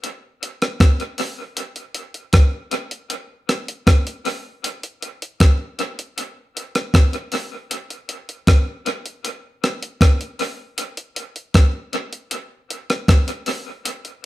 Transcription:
0.04 closed hi-hat
0.43 closed hi-hat
0.62 cross-stick, closed hi-hat
0.80 kick, cross-stick, closed hi-hat
1.00 closed hi-hat
1.18 open hi-hat
1.57 closed hi-hat
1.76 closed hi-hat
1.94 closed hi-hat
2.14 closed hi-hat
2.33 kick, cross-stick, closed hi-hat
2.71 closed hi-hat
2.91 closed hi-hat
3.10 closed hi-hat
3.49 cross-stick, closed hi-hat
3.68 closed hi-hat
3.87 kick, cross-stick, closed hi-hat
4.07 closed hi-hat
4.25 open hi-hat
4.64 closed hi-hat
4.83 closed hi-hat
5.02 closed hi-hat
5.22 closed hi-hat
5.40 kick, cross-stick, closed hi-hat
5.79 closed hi-hat
5.99 closed hi-hat
6.18 closed hi-hat
6.57 closed hi-hat
6.75 cross-stick, closed hi-hat
6.94 kick, cross-stick, closed hi-hat
7.13 closed hi-hat
7.32 open hi-hat
7.71 closed hi-hat
7.90 closed hi-hat
8.09 closed hi-hat
8.29 closed hi-hat
8.47 kick, cross-stick, closed hi-hat
8.86 closed hi-hat
9.06 closed hi-hat
9.25 closed hi-hat
9.64 cross-stick, closed hi-hat
9.82 closed hi-hat
10.01 kick, cross-stick, closed hi-hat
10.21 closed hi-hat
10.39 open hi-hat
10.78 closed hi-hat
10.97 closed hi-hat
11.16 closed hi-hat
11.36 closed hi-hat
11.54 kick, cross-stick, closed hi-hat
11.93 closed hi-hat
12.13 closed hi-hat
12.31 closed hi-hat
12.70 closed hi-hat
12.90 cross-stick, closed hi-hat
13.08 kick, cross-stick, closed hi-hat
13.28 closed hi-hat
13.46 open hi-hat
13.85 closed hi-hat
14.05 closed hi-hat

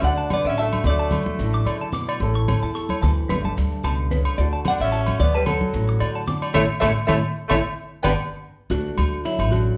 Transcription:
0.02 D2 D3 A3 D4 F#4 D5 F#5, maracas
0.18 A5
0.30 B3 D4 D5, high conga, low conga, low agogo, maracas
0.45 A1 D5 E5
0.49 C#4
0.57 F#4 E5 A5, maracas
0.62 A3
0.73 high conga, low agogo
0.84 D2 F#3 D5, low conga, maracas
0.89 A3
0.99 A5
1.11 D4, high conga, low conga, low agogo, maracas
1.26 high conga
1.39 A1 A2, maracas
1.54 D6, maracas
1.66 C#3 D3 D5, low agogo, maracas
1.81 A5
1.93 B2 D6, low conga, maracas
2.09 D5, low agogo, maracas
2.20 A1 A2 C#4 E4 A4, maracas
2.35 C#6
2.47 C#4 C#5, high conga, low conga, low agogo, maracas
2.62 E2 E4 A5
2.75 A4 C#6, maracas
2.89 C#5, high conga, low agogo
3.02 D2 E3 A5, low conga, maracas
3.29 G1 G2 A3 D4 B4, muted nylon-string guitar stroke, high conga, low conga, low agogo, maracas
3.45 A5, high conga
3.57 D2 D4, maracas
3.72 maracas
3.83 C#2 B2 A5, low agogo, maracas
4.11 C#3 B4, low conga, maracas
4.25 low agogo, maracas
4.38 D2 A3 D4 F#4 D5, muted nylon-string guitar stroke, maracas
4.53 A5
4.65 F#5, high conga, low conga, low agogo, maracas
4.69 D4
4.80 A1 C#4 D5 E5
4.92 F#4 A5, maracas
5.06 high conga, low agogo
5.19 D2 F#3 B3 D5, low conga, maracas
5.35 G3 B4 A5
5.46 F#3 D4 A4, high conga, low conga, low agogo, maracas
5.61 high conga
5.73 A1 A2, maracas
5.89 muted clean electric guitar stroke, maracas
6.00 D3 F#4 D5, low agogo, maracas
6.15 A5
6.27 D4 D6, low conga, maracas
6.42 D5, low agogo, maracas
6.54 A1 A3 C#4 E4 A4 C#5 E5 A5 C#6, low conga, low agogo, maracas
6.80 A1 A3 C#4 E4 A4 C#5 E5 A5 C#6, low conga, low agogo, maracas
7.07 A1 A3 C#4 E4 A4 C#5 E5 A5 C#6, low conga, low agogo, maracas
7.48 A1 A3 C#4 E4 A4 C#5 E5 A5 C#6, low conga, low agogo, maracas
8.03 G1 B3 D4 G4 B4 D5 G5 A5 B5, low conga, low agogo, maracas
8.70 D2 A3 D4 F#4, muted nylon-string guitar stroke, maracas
8.86 maracas
8.97 D2 A3, high conga, low agogo, maracas
9.13 maracas
9.25 F#3 E4, maracas
9.39 A1, low agogo
9.52 D4 F#4, low conga, maracas

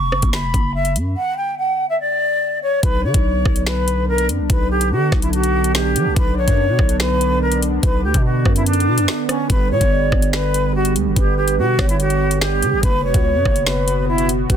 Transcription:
Already playing: C#6
0.02 E1
0.12 F#1, cross-stick
0.22 F#1, kick, closed hi-hat
0.33 B5, finger snap, snare
0.43 E1
0.54 F#1, kick, closed hi-hat
0.75 E5
0.85 closed hi-hat
0.96 F#2, closed hi-hat
1.17 F#5
1.37 G5
1.58 F#5
1.89 E5
2.00 D5
2.62 C#5
2.83 B1 D3 B3 D4 B4, kick, closed hi-hat
3.04 D3 C#5
3.14 B1, kick, closed hi-hat
3.45 B1, kick, cross-stick
3.56 closed hi-hat
3.66 B4, finger snap, snare
3.88 closed hi-hat
4.08 A#4
4.18 closed hi-hat
4.29 F#2, closed hi-hat
4.39 B1
4.50 B1 B4, kick, closed hi-hat
4.71 G4
4.81 closed hi-hat
4.91 D3 F#4
5.12 B1, kick, cross-stick, snare
5.22 E4, closed hi-hat
5.33 F#4, closed hi-hat
5.43 closed hi-hat
5.64 closed hi-hat
5.75 G4, finger snap, snare
5.96 F#3, closed hi-hat
6.06 B1
6.16 B1 B4, kick, closed hi-hat
6.37 A#1 C#5
6.48 F#2, kick, closed hi-hat
6.69 B2
6.79 B1, kick, cross-stick
6.89 closed hi-hat
7.00 B4, finger snap, snare
7.21 closed hi-hat
7.42 A#4
7.52 closed hi-hat
7.62 closed hi-hat
7.83 B1 B4, kick, closed hi-hat
8.04 D2 G4
8.14 B2, kick, closed hi-hat
8.25 F#4
8.45 F#2, kick, cross-stick
8.56 E4, closed hi-hat
8.66 D4, closed hi-hat
8.73 closed hi-hat
8.80 closed hi-hat
8.87 B2
8.98 F#2, closed hi-hat
9.08 finger snap, snare
9.29 C#4, cross-stick, closed hi-hat
9.50 G1 D3 G3 B4, kick, closed hi-hat
9.71 B2 C#5
9.81 G1, kick, closed hi-hat
9.92 D5
10.12 G1, kick, cross-stick
10.22 closed hi-hat
10.33 B4, finger snap, snare
10.54 closed hi-hat
10.75 F#4
10.85 closed hi-hat
10.96 D2, closed hi-hat
11.06 G1
11.16 G1 G4 B4, kick, closed hi-hat
11.37 G4
11.48 closed hi-hat
11.58 B2 F#4
11.79 G1 C#5, kick, cross-stick, snare
11.89 E4, closed hi-hat
12.00 F#4, closed hi-hat
12.10 closed hi-hat
12.31 closed hi-hat
12.41 G4, finger snap, snare
12.62 D3, closed hi-hat
12.73 G1
12.83 F#1 B2 B3 F#4 B4, kick, closed hi-hat
13.04 E1 B4 C#5
13.14 C#2, kick, closed hi-hat
13.24 C#5
13.35 F#2
13.45 F#1, kick, cross-stick
13.56 closed hi-hat
13.66 B4, finger snap, snare
13.88 closed hi-hat
14.08 E4
14.18 closed hi-hat
14.29 closed hi-hat
14.49 F#1 F#4 B4, kick, closed hi-hat

